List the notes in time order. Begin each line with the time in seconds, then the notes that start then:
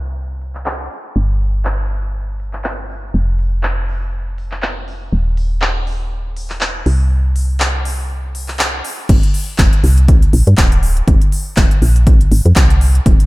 Already playing: C2
0.41 open hi-hat
0.55 clap
0.66 clap
0.91 open hi-hat
1.16 G1
1.41 open hi-hat
1.65 clap
1.90 open hi-hat
2.40 open hi-hat
2.53 clap
2.64 clap
2.89 open hi-hat
3.14 F1
3.39 open hi-hat
3.63 clap
3.89 open hi-hat
4.38 open hi-hat
4.52 clap
4.62 clap
4.88 open hi-hat
5.13 D#1
5.37 open hi-hat
5.62 clap
5.87 open hi-hat
6.37 open hi-hat
6.50 clap
6.61 clap
6.86 C2, open hi-hat
7.36 open hi-hat
7.60 clap
7.85 open hi-hat
8.35 open hi-hat
8.48 clap
8.59 clap
8.85 open hi-hat
9.09 G1, kick, closed hi-hat, crash
9.23 closed hi-hat
9.34 open hi-hat
9.58 F1, kick, clap, closed hi-hat
9.73 closed hi-hat
9.84 C2, open hi-hat
9.98 closed hi-hat
10.08 kick, closed hi-hat
10.22 closed hi-hat
10.33 A#1, open hi-hat
10.47 G2, closed hi-hat
10.57 D1, kick, clap, closed hi-hat
10.72 closed hi-hat
10.83 open hi-hat
10.97 closed hi-hat
11.08 F1, kick, closed hi-hat
11.22 closed hi-hat
11.32 open hi-hat
11.57 D#1, kick, clap, closed hi-hat
11.71 closed hi-hat
11.82 A#1, open hi-hat
11.96 closed hi-hat
12.07 kick, closed hi-hat
12.21 closed hi-hat
12.32 G#1, open hi-hat
12.46 F2, closed hi-hat
12.56 C2, kick, clap, closed hi-hat
12.70 closed hi-hat
12.81 open hi-hat
12.95 closed hi-hat
13.06 D#1, kick, closed hi-hat
13.20 closed hi-hat